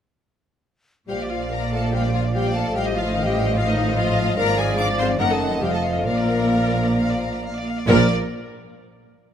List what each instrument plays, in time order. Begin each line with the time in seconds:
1.08 double bass section A#1, cello section A#2, bassoon F3, french horn section G3, viola section G4, clarinet D5, violin section F5 G5, flute F5
1.20 violin section D5
1.30 french horn section F3, viola section F4, violin section F5
1.41 violin section D5
1.51 french horn section A#3, viola section A#4, violin section F5 A#5
1.62 violin section D5
1.71 french horn section A3, viola section A4, violin section F5 A5
1.83 violin section D5
1.93 french horn section G3, viola section G4, violin section F5 G5
2.03 violin section D5
2.13 french horn section F3, viola section F4, violin section F5
2.24 violin section D5
2.34 french horn section G3, viola section G4, violin section F5 G5
2.45 violin section D5
2.54 french horn section A3, viola section A4, violin section F5 A5
2.65 violin section D5
2.75 double bass section A1, cello section A2, french horn section G3, viola section G4, clarinet D#5, violin section F5 G5
2.86 violin section D#5
2.95 french horn section F3, viola section F4, violin section F5
3.06 violin section D#5
3.15 french horn section D#3, viola section D#4, violin section D#5 F5
3.26 french horn section G3, viola section G4, violin section D#5 G5
3.37 violin section F5
3.47 violin section D#5
3.56 french horn section F3, viola section F4, violin section F5
3.66 french horn section D#3, viola section D#4, violin section D#5
3.76 violin section F5
3.87 violin section D#5
3.97 french horn section F3, viola section F4, violin section F5
4.06 violin section D#5
4.17 violin section F5
4.26 violin section D#5
4.35 double bass section G#1, cello section G#2, bassoon F3, french horn section A#3, viola section A#4, clarinet D5, violin section F5 A#5, flute F5
4.46 violin section D5
4.57 french horn section G#3, viola section G#4, violin section F5 G#5
4.68 violin section D5
4.78 french horn section D4, viola section D5, violin section F5 D6
4.88 violin section D5
4.98 french horn section C4, viola section C5, violin section F5 C6
5.08 violin section D5
5.18 double bass section F#1, cello section F#2, bassoon D#3, french horn section A#3, viola section A#4, clarinet D#5, violin section F#5 A#5, flute F#5
5.29 french horn section A3, viola section A4, violin section D#5 A5
5.40 violin section F#5
5.51 violin section D#5
5.62 double bass section F1, cello section F2, bassoon F3, french horn section G3, viola section G4, violin section F5 G5, flute F5
5.72 french horn section A3, viola section A4, violin section D#5 A5
5.83 violin section F5
5.94 violin section D#5
6.05 double bass section A#1, cello section A#2, french horn section A#3, viola section A#4, clarinet D5, violin section F5 A#5
6.16 violin section D5
6.28 violin section F5
6.40 violin section D5
6.50 violin section F5
6.63 violin section D5
6.74 violin section F5
6.86 violin section D5
6.97 violin section F5
7.09 violin section D5
7.20 violin section F5
7.32 violin section D5
7.44 violin section F5
7.55 violin section D5
7.66 violin section F5
7.78 violin section D5
7.88 double bass section A#1, cello section A#2, bassoon F3, french horn section A#3, viola section A#4, clarinet A#4, violin section A#4 D5, flute D5